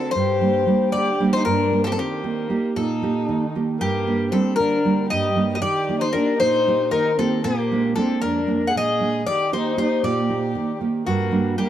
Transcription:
Already playing: D3 A3 C4 D4 F#4 A4
0.11 C5
0.15 G2 G4
0.41 G3 A#3 D4
0.67 G3 A#3 D4
0.92 D3 D5
0.96 G4
1.20 G3 A#3 D4
1.33 D#4 C5
1.45 G2 A#4
1.49 D4
1.72 G3 A#3 D4
1.84 G4 A4
1.89 A#3 C4 A4
1.94 D#3 C4
1.99 A#3 G4
2.24 A#3 D#4 G4
2.50 A#3 D#4 G4
2.76 A#2 D#4 A4
3.02 A#3 D#4 G4
3.29 D#3
3.55 A#3 D#4 G4
3.79 G2 A#3 G4
4.07 G3 A#3 D4
4.31 G3 A#3 C4 D4 A4
4.56 D3 D4 A#4
4.85 G3 A#3 D4
5.09 G2 G4 D#5
5.36 G3 A#3 D4
5.54 G4 D#5
5.62 D#3 G4 D5
5.88 A#3 D#4 G4
6.00 D#4 C5
6.13 A#3 D4 D#4 G4 A#4
6.38 A#2 D#4 C5
6.67 A#3 D#4 G4
6.91 D#3 D#4 A#4
7.17 A#3 C4 D#4 G4 A4
7.44 A#2 A#3 G4
7.71 G#3 A#3 D4
7.96 G#3 A#3 C4 D4 A4
8.22 F2 D4 A#4
8.47 G#3 A#3 D4
8.67 G#4 F#5
8.75 A#2 G#4 D#5
9.00 G#3 A#3 D4
9.26 D#3 G4 D5
9.52 A#3 D#4 G4 C5
9.57 D#4
9.77 A#3 D#4 G4 C5
9.82 D#4
10.03 A#2 D5
10.09 G4
10.29 A#3 D#4 G4
10.55 D#3
10.81 A#3 D#4 G4
11.06 G2 A#3 F#4
11.31 G3 A#3 D4
11.58 G3 A#3 D4 G4

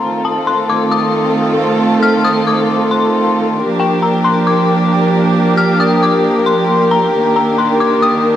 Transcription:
0.02 D#3 A3 C4 F4 A4
0.25 A5
0.47 C6
0.70 D6
0.92 D#6
2.02 F6
2.24 D#6
2.47 D6
2.91 C6
3.58 F3 A#3 D4 G4 A#4
3.79 G5
4.02 A#5
4.24 C6
4.47 D6
5.57 F6
5.80 D#6
6.03 D6
6.46 C6
6.91 A#5
7.13 D#3 D4
7.36 A#5
7.58 C6
7.80 D6
8.02 D#6

